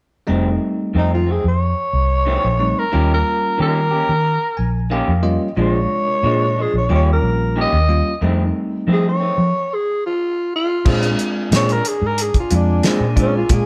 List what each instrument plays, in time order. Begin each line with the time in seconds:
0.27 fingered electric bass F1, clean electric guitar F2 D#3 A3 C4, tine electric piano G3 A3 C4 D#4
0.94 clean electric guitar F2 D#3 A3 C4, fingered electric bass F2, tenor saxophone D#4
1.14 tenor saxophone F4
1.26 clean electric guitar D#3 A3 C4
1.31 tenor saxophone G#4
1.44 fingered electric bass F2, tenor saxophone C#5
1.93 fingered electric bass C2
2.26 clean electric guitar F2 D#3 A3 C4
2.44 fingered electric bass A#1
2.59 tine electric piano G3 A3 C4 D#4
2.79 tenor saxophone A#4
2.92 fingered electric bass D#2, clean electric guitar D#3 A#3 C#4 G4, tine electric piano G3 A#3 C#4 F4
3.14 tenor saxophone A#4
3.58 clean electric guitar D#3 A#3 C#4 G4, fingered electric bass D#3, tenor saxophone A#4
3.91 clean electric guitar A#3 C#4 G4
4.09 fingered electric bass D#3
4.57 fingered electric bass A#1, tine electric piano G#5
4.90 clean electric guitar D#3 A#3 C#4 G4, tine electric piano F5
5.08 fingered electric bass F2
5.23 tine electric piano G3 A#3 C#4 F4 D#5
5.57 fingered electric bass A#1, clean electric guitar A#2 F3 G#3 D4, tine electric piano C3 G#3 D4 F4
5.62 tenor saxophone C#5
6.23 fingered electric bass A#2, clean electric guitar A#2 F3 G#3 D4
6.56 clean electric guitar F3 G#3 D4
6.62 tenor saxophone G#4
6.74 fingered electric bass A#1, tenor saxophone C#5
6.89 fingered electric bass D#2, clean electric guitar D#3 A#3 C#4 G4, tine electric piano G3 A#3 C#4 F4
6.95 tenor saxophone C#5
7.13 tenor saxophone A#4
7.22 fingered electric bass A#1
7.56 clean electric guitar D#3 A#3 C#4 G4
7.61 tenor saxophone D#5
7.73 fingered electric bass D#2
7.88 tine electric piano G3 A#3 C#4 F4
8.21 clean electric guitar F2 D#3 A3 C4, fingered electric bass F2, tine electric piano G3 A3 C4 D#4
8.87 clean electric guitar F2 D#3 A3 C4, fingered electric bass F3
8.93 tenor saxophone G#4
9.08 tenor saxophone C#5
9.20 clean electric guitar D#3 A3 C4
9.38 fingered electric bass F3
9.74 tenor saxophone G#4
10.06 tenor saxophone F4
10.56 tenor saxophone F4
10.85 clean electric guitar A#2 G#3 C4 D4, fingered electric bass A#2, tine electric piano G#3 C4 D4 F4, horn section D4 A#4 G#5, kick, crash
11.03 closed hi-hat
11.19 closed hi-hat
11.51 fingered electric bass A#2, clean electric guitar A#2 G#3 C4 D4, snare, closed hi-hat
11.56 tenor saxophone C#5
11.69 tenor saxophone A#4, closed hi-hat
11.85 tenor saxophone G#4, closed hi-hat
12.02 fingered electric bass G#2
12.07 tenor saxophone A#4
12.18 tenor saxophone G#4, closed hi-hat
12.34 kick, closed hi-hat
12.40 tenor saxophone F4
12.51 fingered electric bass F2, tine electric piano G#3 C4 D4 F4, closed hi-hat
12.55 tenor saxophone D4
12.83 clean electric guitar A#2 G#3 C4 D4, snare, closed hi-hat
13.00 fingered electric bass A#2
13.16 tine electric piano G#3 C4 D4 F4, clean electric guitar G#3 C4 D4, kick, closed hi-hat
13.22 tenor saxophone C#4
13.37 tenor saxophone F4
13.49 fingered electric bass A#2, tine electric piano C3 G#3 D4 F4, kick, closed hi-hat
13.54 tenor saxophone G#4